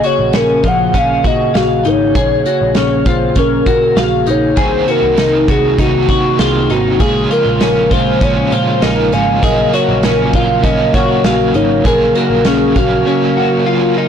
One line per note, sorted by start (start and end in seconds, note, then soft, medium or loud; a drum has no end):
0.00 4.54 C#3 medium
0.00 14.08 A#3 soft
0.00 4.54 G#4 medium
0.00 closed hi-hat soft
0.04 0.34 F#4 medium
0.04 0.38 C#5 medium
0.19 0.32 A#1 medium
0.33 0.60 A#1 medium
0.33 0.64 C#4 medium
0.33 0.69 A#4 medium
0.33 snare loud
0.33 closed hi-hat medium
0.64 0.91 A#1 loud
0.64 0.94 F3 medium
0.64 0.96 F#5 loud
0.64 kick medium
0.64 closed hi-hat soft
0.94 1.21 A#1 loud
0.94 1.25 C#4 medium
0.94 1.24 F5 loud
0.94 kick medium
0.94 closed hi-hat medium
1.24 1.51 A#2 medium
1.24 1.54 F#4 medium
1.24 1.54 D#5 medium
1.24 kick medium
1.24 closed hi-hat medium
1.54 1.82 A#1 loud
1.54 1.88 F#4 medium
1.54 1.85 F5 medium
1.54 snare loud
1.54 closed hi-hat medium
1.85 2.12 G#1 medium
1.85 2.16 D#4 medium
1.85 3.06 C#5 loud
1.85 closed hi-hat soft
2.15 2.42 A#1 medium
2.15 2.46 G#4 medium
2.15 kick loud
2.15 closed hi-hat medium
2.46 2.76 F#4 medium
2.46 closed hi-hat soft
2.61 2.75 A#1 medium
2.75 3.03 A#1 medium
2.75 3.06 C#4 medium
2.75 snare medium
2.75 closed hi-hat medium
3.06 3.33 A#1 loud
3.06 3.37 F4 medium
3.06 3.40 C5 loud
3.06 kick medium
3.06 closed hi-hat medium
3.35 3.63 A#1 loud
3.35 3.67 C#4 medium
3.35 4.01 A#4 loud
3.35 kick medium
3.35 closed hi-hat medium
3.66 3.98 A#2 medium
3.66 3.97 F#4 medium
3.66 kick medium
3.66 closed hi-hat soft
3.97 4.24 A#1 medium
3.97 4.32 F#4 medium
3.97 4.27 F5 medium
3.97 snare loud
3.97 closed hi-hat medium
4.27 4.54 A#1 medium
4.27 4.58 D#4 medium
4.27 4.59 C#5 medium
4.27 closed hi-hat soft
4.56 4.84 C2 medium
4.56 5.76 C3 medium
4.56 6.98 C3 soft
4.56 5.77 D#3 medium
4.56 6.98 D#3 medium
4.56 5.79 A#3 medium
4.56 5.80 C4 medium
4.56 6.98 D#4 medium
4.56 4.88 G#4 medium
4.56 4.92 C5 loud
4.56 kick loud
4.56 closed hi-hat medium
4.61 5.81 F#4 medium
4.88 5.18 F#4 medium
4.88 5.52 A#4 medium
4.88 closed hi-hat soft
5.02 5.16 C2 medium
5.17 5.45 C2 medium
5.17 5.49 D#4 medium
5.17 snare loud
5.17 closed hi-hat medium
5.17 tambourine medium
5.48 5.75 C2 medium
5.48 5.79 F#4 medium
5.48 5.82 G#4 medium
5.48 kick medium
5.48 closed hi-hat medium
5.77 6.05 C2 loud
5.77 6.99 C3 medium
5.77 7.00 D#3 medium
5.77 7.00 A#3 medium
5.77 6.10 D#4 medium
5.77 6.42 F#4 loud
5.77 kick medium
5.77 closed hi-hat medium
5.81 7.01 C4 medium
5.81 7.01 F#4 medium
6.09 6.36 C3 medium
6.09 6.40 F#4 medium
6.09 kick medium
6.09 closed hi-hat medium
6.39 6.66 C2 loud
6.39 6.70 F4 medium
6.39 6.73 G#4 medium
6.39 snare loud
6.39 closed hi-hat medium
6.39 tambourine medium
6.70 6.97 G#1 medium
6.70 7.01 D#4 medium
6.70 7.01 F#4 medium
6.70 closed hi-hat soft
6.99 7.27 A#1 medium
6.99 7.91 A#2 medium
6.99 14.08 C#3 medium
6.99 9.40 F3 medium
6.99 8.21 F3 medium
6.99 9.40 G#3 medium
6.99 7.91 G#3 medium
6.99 7.92 C#4 medium
6.99 7.90 F4 medium
6.99 7.30 G#4 medium
6.99 7.34 G#4 medium
6.99 14.08 F5 medium
6.99 kick loud
6.99 closed hi-hat medium
7.31 7.61 F4 medium
7.31 7.94 A#4 medium
7.31 closed hi-hat soft
7.46 7.59 A#1 medium
7.60 7.88 A#1 medium
7.60 7.92 C#4 medium
7.60 snare medium
7.60 closed hi-hat medium
7.60 tambourine medium
7.91 8.18 A#1 medium
7.91 8.21 G#3 soft
7.91 8.21 C#4 soft
7.91 8.21 F4 soft
7.91 8.22 F4 medium
7.91 8.25 C5 loud
7.91 kick medium
7.91 closed hi-hat medium
8.21 8.48 A#1 loud
8.21 8.82 A#2 medium
8.21 8.81 F3 medium
8.21 8.81 G#3 medium
8.21 8.52 C#4 medium
8.21 8.83 C#4 medium
8.21 8.84 F4 medium
8.21 8.54 C#5 medium
8.21 kick medium
8.21 closed hi-hat medium
8.52 8.79 A#2 medium
8.52 8.82 F4 medium
8.52 8.84 C5 medium
8.52 closed hi-hat soft
8.82 9.09 A#1 loud
8.82 9.42 F3 medium
8.82 9.43 G#3 medium
8.82 9.44 C#4 medium
8.82 9.13 D#4 medium
8.82 9.45 F4 medium
8.82 9.15 A#4 medium
8.82 snare loud
8.82 closed hi-hat medium
8.82 tambourine medium
9.12 9.40 G#1 medium
9.12 9.43 C#4 medium
9.12 9.43 F5 medium
9.12 closed hi-hat soft
9.42 9.70 A#1 medium
9.42 10.61 A#2 medium
9.42 10.63 F#3 medium
9.42 14.08 F#3 medium
9.42 10.65 A#3 medium
9.42 10.66 C#4 medium
9.42 9.73 G#4 medium
9.42 14.08 A#4 medium
9.42 9.75 D#5 medium
9.42 kick loud
9.42 closed hi-hat medium
9.46 10.66 F4 medium
9.73 10.04 F#4 medium
9.73 10.06 C#5 medium
9.73 closed hi-hat soft
9.88 10.02 A#1 medium
10.03 10.30 A#1 medium
10.03 10.34 C#4 medium
10.03 10.36 A#4 medium
10.03 snare loud
10.03 closed hi-hat medium
10.03 tambourine medium
10.33 10.60 A#1 loud
10.33 10.65 F4 medium
10.33 10.64 F5 loud
10.33 kick medium
10.33 closed hi-hat soft
10.62 10.90 A#1 loud
10.62 11.83 A#2 medium
10.62 11.85 F#3 medium
10.62 11.85 A#3 medium
10.62 10.95 C#4 medium
10.62 11.85 C#4 medium
10.62 10.96 D#5 medium
10.62 kick medium
10.62 closed hi-hat medium
10.94 11.21 A#2 medium
10.94 11.25 F#4 medium
10.94 11.27 C#5 medium
10.94 kick medium
10.94 closed hi-hat medium
11.24 11.51 A#1 medium
11.24 11.57 F#4 medium
11.24 11.55 F5 medium
11.24 snare loud
11.24 closed hi-hat medium
11.24 tambourine medium
11.54 11.81 G#1 medium
11.54 11.85 D#4 medium
11.54 11.88 C#5 medium
11.54 closed hi-hat soft
11.84 12.12 A#1 medium
11.84 12.76 A#2 medium
11.84 13.06 F#3 medium
11.84 12.77 A#3 medium
11.84 12.76 C#4 medium
11.84 12.77 F4 medium
11.84 12.15 G#4 medium
11.84 12.16 A#4 medium
11.84 kick loud
11.84 closed hi-hat medium
12.15 12.46 F#4 medium
12.15 12.45 A#4 medium
12.15 closed hi-hat soft
12.30 12.44 A#1 medium
12.45 12.72 A#1 medium
12.45 12.76 C#4 medium
12.45 12.80 G#4 medium
12.45 snare medium
12.45 closed hi-hat medium
12.45 tambourine medium
12.76 13.03 A#1 medium
12.76 13.06 A#3 soft
12.76 13.06 C#4 soft
12.76 13.68 F#4 medium
12.76 13.07 F5 medium
12.76 kick medium
12.76 closed hi-hat medium
13.05 13.66 A#2 medium
13.05 13.65 F#3 medium
13.05 13.66 A#3 medium
13.05 13.37 C#4 medium
13.05 13.67 C#4 medium
13.37 13.66 F#4 medium
13.65 14.08 F#3 medium
13.65 14.08 A#3 medium
13.65 14.08 C#4 medium
13.65 13.97 F4 medium
13.65 14.08 F4 medium
13.98 14.08 D#4 medium